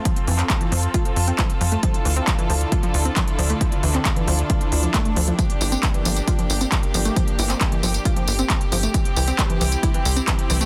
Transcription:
Already playing: string section C4 F4 A4
0.05 synth arpeggio sound F3, kick, closed hi-hat
0.16 closed hi-hat
0.28 analog synth bass F2, synth arpeggio sound E3, open hi-hat
0.39 synth arpeggio sound C4, clap, closed hi-hat
0.50 kick, clap, closed hi-hat
0.61 synth arpeggio sound E3, closed hi-hat
0.72 analog synth bass F2, synth arpeggio sound F3, open hi-hat
0.83 closed hi-hat
0.94 synth arpeggio sound F4, kick, closed hi-hat
1.05 synth arpeggio sound F3, closed hi-hat
1.16 analog synth bass F2, open hi-hat
1.27 synth arpeggio sound C4, closed hi-hat
1.39 synth arpeggio sound F3, kick, clap, closed hi-hat
1.50 closed hi-hat
1.61 analog synth bass F2, synth arpeggio sound F3, open hi-hat
1.72 synth arpeggio sound A3, closed hi-hat
1.83 string section D3 D4 E4, synth arpeggio sound F3, kick, closed hi-hat
1.94 closed hi-hat
2.05 analog synth bass D2, synth arpeggio sound E3, open hi-hat
2.16 synth arpeggio sound C4, closed hi-hat
2.27 kick, clap, closed hi-hat
2.39 synth arpeggio sound E3, closed hi-hat
2.50 analog synth bass D2, synth arpeggio sound F3, open hi-hat
2.61 closed hi-hat
2.72 synth arpeggio sound F4, kick, closed hi-hat
2.83 synth arpeggio sound F3, closed hi-hat
2.94 analog synth bass D2, open hi-hat
3.05 synth arpeggio sound C4, closed hi-hat
3.16 synth arpeggio sound F3, kick, clap, closed hi-hat
3.28 closed hi-hat
3.39 analog synth bass D2, synth arpeggio sound F3, open hi-hat
3.50 synth arpeggio sound A3, closed hi-hat
3.61 synth arpeggio sound F3, kick, closed hi-hat
3.72 closed hi-hat
3.83 analog synth bass D2, synth arpeggio sound E3, open hi-hat
3.94 synth arpeggio sound C4, clap, closed hi-hat
4.05 kick, clap, closed hi-hat
4.16 synth arpeggio sound E3, closed hi-hat
4.28 analog synth bass D2, synth arpeggio sound F3, open hi-hat
4.39 closed hi-hat
4.50 synth arpeggio sound F4, kick, closed hi-hat
4.61 synth arpeggio sound F3, closed hi-hat
4.72 analog synth bass D2, open hi-hat
4.83 synth arpeggio sound F3, closed hi-hat
4.94 synth arpeggio sound A3, kick, clap, closed hi-hat
5.05 synth arpeggio sound A3, closed hi-hat
5.16 analog synth bass D2, synth arpeggio sound F3, open hi-hat
5.28 synth arpeggio sound F3, closed hi-hat
5.39 synth arpeggio sound F3, string section A#3 G4, kick, closed hi-hat, tambourine
5.50 closed hi-hat
5.61 analog synth bass G1, synth arpeggio sound E3, open hi-hat, tambourine
5.72 synth arpeggio sound C4, closed hi-hat, tambourine
5.83 kick, clap, closed hi-hat, tambourine
5.94 synth arpeggio sound E3, closed hi-hat
6.05 analog synth bass G1, synth arpeggio sound F3, open hi-hat, tambourine
6.16 closed hi-hat, tambourine
6.28 synth arpeggio sound F4, kick, closed hi-hat, tambourine
6.39 synth arpeggio sound F3, closed hi-hat
6.50 analog synth bass G1, open hi-hat, tambourine
6.61 synth arpeggio sound C4, closed hi-hat, tambourine
6.72 synth arpeggio sound F3, kick, clap, closed hi-hat, tambourine
6.83 closed hi-hat
6.94 analog synth bass G1, synth arpeggio sound F3, open hi-hat, tambourine
7.05 synth arpeggio sound A3, closed hi-hat, tambourine
7.16 synth arpeggio sound F3, kick, closed hi-hat, tambourine
7.28 closed hi-hat
7.39 analog synth bass G1, synth arpeggio sound E3, open hi-hat, tambourine
7.50 synth arpeggio sound C4, clap, closed hi-hat, tambourine
7.61 kick, clap, closed hi-hat, tambourine
7.72 synth arpeggio sound E3, closed hi-hat
7.83 analog synth bass G1, synth arpeggio sound F3, open hi-hat, tambourine
7.94 closed hi-hat, tambourine
8.05 synth arpeggio sound F4, kick, closed hi-hat, tambourine
8.16 synth arpeggio sound F3, closed hi-hat
8.28 analog synth bass G1, open hi-hat, tambourine
8.39 synth arpeggio sound C4, closed hi-hat, tambourine
8.50 synth arpeggio sound F3, kick, clap, closed hi-hat, tambourine
8.61 closed hi-hat
8.72 analog synth bass G1, synth arpeggio sound F3, open hi-hat, tambourine
8.83 synth arpeggio sound A3, closed hi-hat, tambourine
8.94 synth arpeggio sound E3, string section C4 E4, kick, closed hi-hat, tambourine
9.05 closed hi-hat
9.16 analog synth bass C2, synth arpeggio sound E3, open hi-hat, tambourine
9.28 synth arpeggio sound C4, closed hi-hat, tambourine
9.39 kick, clap, closed hi-hat, tambourine
9.50 synth arpeggio sound E3, closed hi-hat
9.61 analog synth bass C2, synth arpeggio sound E3, open hi-hat, tambourine
9.72 closed hi-hat, tambourine
9.83 synth arpeggio sound E4, kick, closed hi-hat, tambourine
9.94 synth arpeggio sound E3, closed hi-hat
10.05 analog synth bass C2, open hi-hat, tambourine
10.17 synth arpeggio sound C4, closed hi-hat, tambourine
10.28 synth arpeggio sound E3, kick, clap, closed hi-hat, tambourine
10.39 closed hi-hat
10.50 analog synth bass C2, synth arpeggio sound E3, open hi-hat, tambourine
10.61 synth arpeggio sound A3, closed hi-hat, tambourine

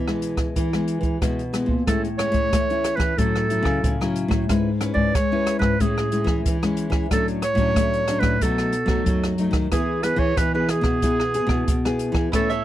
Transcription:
Already playing: nylon-string guitar B2 E3
0.08 nylon-string guitar G#3 B3 E4, cross-stick
0.22 closed hi-hat
0.37 kick, cross-stick, closed hi-hat
0.56 nylon-string guitar E3, kick, closed hi-hat
0.73 nylon-string guitar G#3 B3 E4, cross-stick, closed hi-hat
0.88 closed hi-hat
1.01 nylon-string guitar E3, kick, closed hi-hat
1.21 nylon-string guitar B2 G#3 B3 E4, kick, cross-stick, closed hi-hat
1.39 closed hi-hat
1.53 nylon-string guitar G#3 B3 E4, cross-stick, closed hi-hat
1.66 nylon-string guitar A#2, kick
1.87 nylon-string guitar A2 G#3 C#4 E4, clarinet A4, kick, cross-stick, closed hi-hat
2.05 closed hi-hat
2.18 nylon-string guitar G#3 C#4 E4, clarinet C#5, cross-stick, closed hi-hat
2.32 nylon-string guitar A2, kick, closed hi-hat
2.53 nylon-string guitar E3 A3, kick, cross-stick, closed hi-hat
2.70 nylon-string guitar C#4 E4, closed hi-hat
2.84 cross-stick, closed hi-hat
2.96 nylon-string guitar E3, clarinet B4, kick, cross-stick, closed hi-hat
3.18 nylon-string guitar A2 F#3 C#4 E4, clarinet A4, kick, closed hi-hat
3.36 cross-stick, closed hi-hat
3.50 nylon-string guitar F#3 C#4 E4, closed hi-hat
3.63 nylon-string guitar C#3, kick, cross-stick
3.84 nylon-string guitar A2 C#3, kick, closed hi-hat
4.01 nylon-string guitar F#3 C#4 E4, cross-stick, closed hi-hat
4.16 closed hi-hat
4.28 nylon-string guitar A2, kick, cross-stick, closed hi-hat
4.49 nylon-string guitar G#2 G#3 C#4 E4 B4, kick, cross-stick, closed hi-hat
4.80 nylon-string guitar C#4 E4 B4, cross-stick, closed hi-hat
4.94 nylon-string guitar G#2, clarinet D5, kick
5.15 nylon-string guitar G#3, clarinet C#5, kick, cross-stick, closed hi-hat
5.32 nylon-string guitar C#4 E4 B4
5.47 cross-stick, closed hi-hat
5.59 nylon-string guitar G#2, clarinet B4, kick, cross-stick
5.80 nylon-string guitar A2 G#3 C#4 E4, clarinet G#4, kick, closed hi-hat
5.98 cross-stick
6.12 nylon-string guitar G#3 C#4 E4, closed hi-hat
6.24 nylon-string guitar E3, kick, cross-stick
6.45 nylon-string guitar E3, kick, closed hi-hat
6.62 nylon-string guitar G#3 C#4 E4, cross-stick, closed hi-hat
6.77 closed hi-hat
6.90 nylon-string guitar E3, kick, cross-stick
7.11 nylon-string guitar A2 F#3 C#4 D4, clarinet A4, kick, cross-stick, closed hi-hat
7.28 closed hi-hat
7.42 clarinet C#5, cross-stick, closed hi-hat
7.55 nylon-string guitar A2 F#3 C#4, kick, closed hi-hat
7.59 nylon-string guitar D4
7.76 nylon-string guitar A2 A3, kick, cross-stick, closed hi-hat
7.93 closed hi-hat
8.08 nylon-string guitar F#3 C#4 D4, cross-stick, closed hi-hat
8.20 nylon-string guitar A2, clarinet B4, kick, cross-stick, closed hi-hat
8.41 nylon-string guitar B2 F#3 A3 D#4, clarinet A4, kick, closed hi-hat
8.58 cross-stick, closed hi-hat
8.73 closed hi-hat
8.86 nylon-string guitar F#3 A3 D#4, kick, cross-stick
9.06 nylon-string guitar F#2 F#3, kick, closed hi-hat
9.24 cross-stick, closed hi-hat
9.38 nylon-string guitar F#3 A3 D#4, closed hi-hat
9.51 nylon-string guitar D#3, kick, cross-stick, closed hi-hat
9.72 nylon-string guitar E3 B3 E4 G#4, clarinet G#4, kick, cross-stick, closed hi-hat
10.03 nylon-string guitar B3 E4 G#4, clarinet B4, cross-stick, closed hi-hat
10.16 nylon-string guitar E3, clarinet C#5, kick
10.37 nylon-string guitar B2 E3, clarinet B4, kick, cross-stick, closed hi-hat
10.54 nylon-string guitar B3 E4 G#4, clarinet B4
10.69 clarinet G#4, cross-stick, closed hi-hat
10.81 nylon-string guitar B2, kick, cross-stick
11.02 nylon-string guitar E3 B3 E4 G#4, kick, closed hi-hat
11.20 cross-stick
11.34 nylon-string guitar B3 E4 G#4, closed hi-hat
11.47 nylon-string guitar B2, kick, cross-stick
11.68 nylon-string guitar B2, kick, closed hi-hat
11.85 nylon-string guitar B3 E4 G#4, cross-stick, closed hi-hat
11.99 closed hi-hat
12.12 nylon-string guitar E3, kick, cross-stick
12.32 nylon-string guitar A2 E3 A3 C#4, cavaquinho E4 A4 C#5 E5, clarinet A4, kick, cross-stick, closed hi-hat
12.50 cavaquinho A4 C#5 E5, closed hi-hat

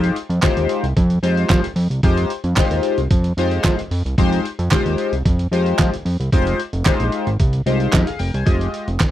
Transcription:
Already playing: analog synth bass F2, analog polysynth G#3 D#4 F4 G4 C5
0.04 closed hi-hat
0.16 closed hi-hat
0.29 analog synth bass F2, closed hi-hat
0.42 analog polysynth G#3 D#4 F4 G4 C5, kick, snare, clap, closed hi-hat
0.57 analog synth bass D#2, closed hi-hat
0.69 closed hi-hat
0.83 analog synth bass C2, closed hi-hat
0.97 analog synth bass F2, kick, closed hi-hat
1.10 closed hi-hat
1.23 analog synth bass F2, analog polysynth G#3 D#4 F4 G4 C5, closed hi-hat
1.37 closed hi-hat
1.49 analog synth bass F3, kick, snare, clap, closed hi-hat
1.64 closed hi-hat
1.76 analog synth bass F2, open hi-hat
1.90 analog synth bass C2, closed hi-hat
2.03 analog synth bass F2, analog polysynth G#3 D#4 F4 G4 C5, kick, closed hi-hat
2.17 closed hi-hat
2.30 closed hi-hat
2.44 analog synth bass F2, closed hi-hat
2.56 analog polysynth G3 D#4 F4 G4 C5, kick, snare, clap, closed hi-hat
2.64 analog polysynth G#3
2.71 analog synth bass D#2, closed hi-hat
2.83 closed hi-hat
2.98 analog synth bass C2, closed hi-hat
3.11 analog synth bass F2, kick, closed hi-hat
3.24 closed hi-hat
3.37 analog synth bass F2, analog polysynth G#3 D#4 F4 G4 C5, closed hi-hat
3.51 closed hi-hat
3.64 analog synth bass F3, kick, snare, clap, closed hi-hat
3.79 closed hi-hat
3.91 analog synth bass F2, open hi-hat
4.05 analog synth bass C2, closed hi-hat
4.18 analog synth bass F2, analog polysynth G#3 D#4 F4 G4 C5, kick, closed hi-hat
4.33 closed hi-hat
4.45 closed hi-hat
4.59 analog synth bass F2, closed hi-hat
4.71 analog polysynth G#3 D#4 F4 G4 C5, kick, snare, clap, closed hi-hat
4.86 analog synth bass D#2, closed hi-hat
4.98 closed hi-hat
5.12 analog synth bass C2, closed hi-hat
5.25 analog synth bass F2, kick, closed hi-hat
5.39 closed hi-hat
5.51 analog synth bass F2, analog polysynth G#3 D#4 F4 G4 C5, closed hi-hat
5.66 closed hi-hat
5.78 analog synth bass F3, kick, snare, clap, closed hi-hat
5.94 closed hi-hat
6.05 analog synth bass F2, open hi-hat
6.20 analog synth bass C2, closed hi-hat
6.32 analog synth bass F1, analog polysynth G#3 D#4 F4 G4 C5, kick, closed hi-hat
6.47 closed hi-hat
6.60 closed hi-hat
6.73 analog synth bass F1, closed hi-hat
6.85 analog polysynth G#3 D#4 F4 G4 C5, kick, snare, clap, closed hi-hat
7.00 analog synth bass A#1, closed hi-hat
7.12 closed hi-hat
7.27 analog synth bass G#1, closed hi-hat
7.40 analog synth bass C2, kick, closed hi-hat
7.53 closed hi-hat
7.66 analog synth bass C2, analog polysynth G#3 D#4 F4 G4 C5, closed hi-hat
7.80 closed hi-hat
7.92 analog synth bass F2, analog polysynth G4 D#5, kick, snare, clap, closed hi-hat
8.07 analog polysynth G#4 F5, closed hi-hat
8.19 analog synth bass F1, analog polysynth A#4 G5, open hi-hat
8.34 analog synth bass C2, analog polysynth C5 G#5, closed hi-hat
8.45 analog synth bass F1, analog polysynth G#3 F4 G4 D#5, kick, closed hi-hat
8.61 closed hi-hat
8.74 closed hi-hat
8.88 analog synth bass F1, closed hi-hat
9.00 kick, snare, clap, closed hi-hat

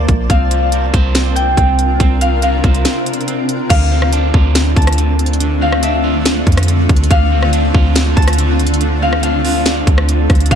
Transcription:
Already playing: ambient pad A#3 F4 C5 D5 A5, clean electric guitar A#3 A4 A#4, harp E5
0.08 808-style bass A#1, kick, closed hi-hat
0.30 808-style bass C2, ambient pad C3 C4 D4 F4 A#4, clean electric guitar C4, harp F5, kick, closed hi-hat
0.51 clean electric guitar F4, closed hi-hat
0.72 clean electric guitar A#4, closed hi-hat
0.94 808-style bass C2, clean electric guitar C5, kick, closed hi-hat
1.15 clean electric guitar C4, snare, closed hi-hat
1.36 harp G5, closed hi-hat
1.57 808-style bass C2, clean electric guitar C4, kick, closed hi-hat
1.79 closed hi-hat
2.00 808-style bass C2, clean electric guitar C4, kick, closed hi-hat
2.21 clean electric guitar F4, harp F5, closed hi-hat
2.42 clean electric guitar A#4, harp F5, closed hi-hat
2.64 808-style bass C2, clean electric guitar C5, kick, closed hi-hat
2.74 closed hi-hat
2.85 clean electric guitar C4, snare, closed hi-hat
3.06 closed hi-hat
3.13 closed hi-hat
3.21 closed hi-hat
3.28 clean electric guitar C4, closed hi-hat
3.49 closed hi-hat
3.69 808-style bass D2, clean electric guitar D3, ambient pad D3 A3 C4 D4 F4, harp F5, kick, closed hi-hat, crash
3.92 clean electric guitar C4
4.02 cross-stick
4.12 clean electric guitar D4, closed hi-hat
4.34 808-style bass D2, clean electric guitar F4, kick
4.55 clean electric guitar D3, snare, closed hi-hat
4.76 808-style bass D2, harp A5, kick, closed hi-hat
4.82 closed hi-hat
4.87 cross-stick, closed hi-hat
4.92 closed hi-hat
4.98 clean electric guitar D3, closed hi-hat
5.19 closed hi-hat
5.26 closed hi-hat
5.33 closed hi-hat
5.40 clean electric guitar D3, closed hi-hat
5.61 clean electric guitar C4, harp F5
5.72 cross-stick
5.83 clean electric guitar D4, harp E5, closed hi-hat
6.04 clean electric guitar F4
6.25 clean electric guitar D3, snare, closed hi-hat
6.47 808-style bass F2, kick, closed hi-hat
6.52 closed hi-hat
6.57 cross-stick, closed hi-hat
6.63 closed hi-hat
6.68 clean electric guitar D3, closed hi-hat
6.89 808-style bass D2, kick, closed hi-hat
6.96 closed hi-hat
7.04 closed hi-hat
7.11 808-style bass D2, clean electric guitar D3, ambient pad D4, harp F5, kick, closed hi-hat
7.32 clean electric guitar C4
7.43 cross-stick
7.53 clean electric guitar D4, closed hi-hat
7.74 808-style bass D2, clean electric guitar F4, kick
7.95 clean electric guitar D3, snare, closed hi-hat
8.16 808-style bass D2, harp A5, kick, closed hi-hat
8.22 closed hi-hat
8.28 cross-stick, closed hi-hat
8.33 closed hi-hat
8.38 clean electric guitar D3, closed hi-hat
8.59 closed hi-hat
8.67 closed hi-hat
8.74 closed hi-hat
8.81 clean electric guitar D3, closed hi-hat
9.02 clean electric guitar C4, harp F5
9.13 cross-stick
9.23 clean electric guitar D4, harp F5, closed hi-hat
9.45 clean electric guitar F4, open hi-hat
9.66 clean electric guitar D3, snare, closed hi-hat
9.87 808-style bass D2, kick, closed hi-hat
9.98 cross-stick
10.08 clean electric guitar D3, closed hi-hat
10.30 808-style bass D2, kick, cross-stick, closed hi-hat
10.35 closed hi-hat
10.40 closed hi-hat
10.46 closed hi-hat
10.51 808-style bass A#1, clean electric guitar A#3, ambient pad A#3 C5 D5 A5, harp F5, kick, closed hi-hat

